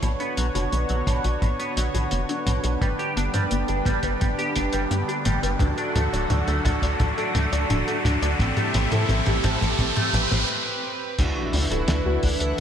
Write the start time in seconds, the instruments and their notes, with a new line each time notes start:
0.02 analog synth bass B1, clean electric guitar B2, analog synth pad D3 B3 F#4 C#5, synth arpeggio sound B3, analog polysynth D4 B4 C#5, kick, closed hi-hat, mid tom, riser
0.20 clean electric guitar B3, synth arpeggio sound D4, closed hi-hat
0.37 analog synth bass B1, clean electric guitar F#3, synth arpeggio sound B3, closed hi-hat
0.55 analog synth bass F#1, clean electric guitar B2, analog polysynth D4 B4 C#5, synth arpeggio sound F#4, closed hi-hat
0.72 analog synth bass B1, synth arpeggio sound B3, closed hi-hat
0.89 analog synth bass B1, clean electric guitar F#3, synth arpeggio sound D4, closed hi-hat
1.07 analog synth bass B1, clean electric guitar B2, synth arpeggio sound B3, analog polysynth D4 B4 C#5, kick, closed hi-hat, mid tom
1.24 analog synth bass B1, clean electric guitar B2, synth arpeggio sound F#4, kick, closed hi-hat
1.42 analog synth bass B1, clean electric guitar B2, synth arpeggio sound B3, kick, closed hi-hat, mid tom
1.59 clean electric guitar B3, synth arpeggio sound D4, closed hi-hat
1.77 analog synth bass B1, clean electric guitar F#3, synth arpeggio sound B3, closed hi-hat
1.94 analog synth bass B1, clean electric guitar B2, synth arpeggio sound F#4, closed hi-hat, mid tom
2.11 analog synth bass F#1, synth arpeggio sound B3, closed hi-hat
2.29 clean electric guitar F#3, synth arpeggio sound D4, closed hi-hat
2.46 analog synth bass B1, clean electric guitar B2, synth arpeggio sound B3, closed hi-hat, mid tom
2.64 analog synth bass B1, clean electric guitar B2, synth arpeggio sound F#4, closed hi-hat
2.81 analog synth bass G1, clean electric guitar G3, analog synth pad G3 B3 G4, synth arpeggio sound B3, analog polysynth D4 G4 B4, kick, closed hi-hat, mid tom
2.99 synth arpeggio sound G4, clean electric guitar G4, closed hi-hat
3.16 analog synth bass G1, synth arpeggio sound B3, clean electric guitar D4, closed hi-hat
3.34 analog synth bass G2, clean electric guitar G3, analog polysynth D4 G4 B4, synth arpeggio sound B4, closed hi-hat, mid tom
3.51 analog synth bass G1, synth arpeggio sound B3, closed hi-hat
3.68 analog synth bass G1, clean electric guitar D4, synth arpeggio sound G4, closed hi-hat
3.85 analog synth bass G1, clean electric guitar G3, synth arpeggio sound B3, analog polysynth D4 G4 B4, kick, closed hi-hat, mid tom
4.03 analog synth bass G1, clean electric guitar G3, synth arpeggio sound B4, kick, closed hi-hat
4.21 analog synth bass G1, clean electric guitar G3, synth arpeggio sound B3, kick, closed hi-hat, mid tom
4.38 clean electric guitar G4, synth arpeggio sound G4, closed hi-hat
4.56 analog synth bass G1, synth arpeggio sound B3, clean electric guitar D4, kick, closed hi-hat
4.73 analog synth bass G1, clean electric guitar G3, synth arpeggio sound B4, closed hi-hat
4.91 analog synth bass G2, synth arpeggio sound B3, closed hi-hat
5.08 clean electric guitar D4, synth arpeggio sound G4, closed hi-hat
5.25 analog synth bass G1, clean electric guitar G3, synth arpeggio sound B3, closed hi-hat, mid tom
5.43 analog synth bass G1, clean electric guitar G3, synth arpeggio sound B4, closed hi-hat
5.59 analog synth bass D2, clean electric guitar D3, analog synth pad F#3 A3 F#4, analog polysynth D4 F#4 A4, synth arpeggio sound D4, kick, closed hi-hat, mid tom
5.78 clean electric guitar D4, synth arpeggio sound A4, closed hi-hat
5.95 analog synth bass D2, clean electric guitar A3, synth arpeggio sound D4, closed hi-hat, mid tom
6.13 analog synth bass D1, clean electric guitar D3, analog polysynth D4 F#4 A4, synth arpeggio sound D5, closed hi-hat
6.30 analog synth bass D2, synth arpeggio sound D4, closed hi-hat, mid tom
6.48 analog synth bass D2, clean electric guitar A3, synth arpeggio sound A4, closed hi-hat
6.65 analog synth bass D2, clean electric guitar D3, synth arpeggio sound D4, analog polysynth D4 F#4 A4, kick, closed hi-hat, mid tom
6.82 analog synth bass D2, clean electric guitar D3, synth arpeggio sound D5, kick, closed hi-hat
7.00 analog synth bass D2, clean electric guitar D3, synth arpeggio sound D4, kick, closed hi-hat, mid tom
7.18 clean electric guitar D4, synth arpeggio sound A4, closed hi-hat
7.35 analog synth bass D2, clean electric guitar A3, synth arpeggio sound D4, closed hi-hat, mid tom
7.52 analog synth bass D2, clean electric guitar D3, synth arpeggio sound D5, closed hi-hat
7.70 analog synth bass D1, synth arpeggio sound D4, closed hi-hat, mid tom
7.87 clean electric guitar A3, synth arpeggio sound A4, closed hi-hat
8.05 analog synth bass D2, clean electric guitar D3, synth arpeggio sound D4, closed hi-hat, mid tom
8.22 analog synth bass D2, clean electric guitar D3, synth arpeggio sound D5, closed hi-hat
8.39 analog synth bass A1, clean electric guitar A2, analog synth pad C3 G3 A3 E4, analog polysynth C4 G4 A4, synth arpeggio sound C4, kick, closed hi-hat, mid tom
8.57 clean electric guitar A3, synth arpeggio sound G4, closed hi-hat, mid tom
8.74 analog synth bass A1, clean electric guitar E3, synth arpeggio sound C4, closed hi-hat, mid tom
8.92 clean electric guitar A2, analog synth bass A2, analog polysynth C4 G4 A4, synth arpeggio sound A4, closed hi-hat, mid tom
9.09 analog synth bass A1, synth arpeggio sound C4, closed hi-hat, mid tom
9.26 analog synth bass A1, clean electric guitar E3, synth arpeggio sound G4, closed hi-hat, mid tom
9.44 analog synth bass A1, clean electric guitar A2, analog polysynth C4 G4 A4, synth arpeggio sound C4, kick, closed hi-hat, mid tom
9.61 analog synth bass A1, clean electric guitar A2, synth arpeggio sound A4, kick, closed hi-hat, mid tom
9.79 analog synth bass A1, clean electric guitar A2, synth arpeggio sound C4, kick, closed hi-hat, mid tom
9.96 clean electric guitar A3, synth arpeggio sound G4, closed hi-hat, mid tom
10.13 analog synth bass A1, clean electric guitar E3, analog polysynth C4 G4 B4, synth arpeggio sound C4, kick, closed hi-hat, mid tom
10.31 analog synth bass A1, clean electric guitar A2, synth arpeggio sound C4, closed hi-hat, mid tom
11.19 analog synth bass D2, analog synth pad D3 E3 A3 E4, synth arpeggio sound D4, analog polysynth D4 E4 F#4, soft synth lead B4, kick, closed hi-hat, crash, impact
11.36 synth arpeggio sound F#4
11.53 analog synth bass D2, synth arpeggio sound D4, open hi-hat
11.71 analog synth bass D1, analog polysynth D4 E4 F#4, synth arpeggio sound A4, closed hi-hat
11.88 analog synth bass D2, synth arpeggio sound D4, snare, closed hi-hat
12.06 analog synth bass D2, synth arpeggio sound F#4
12.23 analog synth bass D2, analog polysynth D4 E4 F#5, synth arpeggio sound D4, kick, open hi-hat
12.40 analog synth bass D2, synth arpeggio sound A4, closed hi-hat